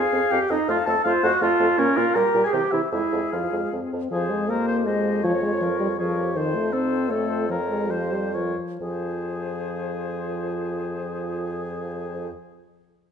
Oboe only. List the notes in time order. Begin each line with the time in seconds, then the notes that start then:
Already playing: G#5
0.31 G5
0.50 D#5
0.69 F5
0.86 A5
1.04 F5
1.23 F#5
1.41 F5
1.78 C#5
1.97 F5
2.15 A#5
2.44 G#5
2.53 G5
2.71 E5
2.92 E5
3.32 F5
4.12 G#4
4.50 A#4
4.68 C5
4.87 C5
5.24 C#5
5.99 C#5
6.37 C5
6.73 A4
7.11 A4
7.51 A#4
7.91 C5
8.34 C#5
8.81 G#4